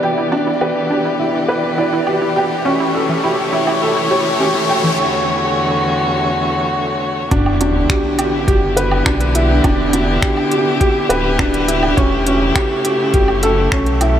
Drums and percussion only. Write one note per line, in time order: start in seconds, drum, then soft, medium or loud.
0.61 low woodblock medium
2.07 low woodblock medium
3.67 low woodblock medium
7.31 kick medium
7.31 closed hi-hat soft
7.46 low woodblock medium
7.61 closed hi-hat medium
7.90 finger snap loud
7.90 kick loud
7.90 closed hi-hat soft
8.19 closed hi-hat medium
8.19 low woodblock medium
8.48 kick loud
8.48 closed hi-hat soft
8.77 closed hi-hat medium
8.91 low woodblock medium
9.06 finger snap medium
9.06 kick loud
9.21 closed hi-hat soft
9.35 closed hi-hat medium
9.64 kick loud
9.64 closed hi-hat soft
9.64 low woodblock medium
9.93 closed hi-hat medium
10.22 finger snap loud
10.22 kick loud
10.22 closed hi-hat soft
10.37 low woodblock medium
10.52 closed hi-hat medium
10.81 kick loud
10.81 closed hi-hat soft
11.10 closed hi-hat medium
11.10 low woodblock medium
11.39 finger snap medium
11.39 kick loud
11.54 closed hi-hat soft
11.68 closed hi-hat medium
11.83 low woodblock medium
11.98 kick loud
11.98 closed hi-hat soft
12.27 closed hi-hat medium
12.56 finger snap loud
12.56 kick loud
12.56 closed hi-hat soft
12.56 low woodblock medium
12.85 closed hi-hat medium
13.14 kick loud
13.14 closed hi-hat soft
13.28 low woodblock medium
13.43 closed hi-hat medium
13.72 finger snap medium
13.72 kick loud
13.86 closed hi-hat soft
14.01 closed hi-hat medium
14.01 low woodblock medium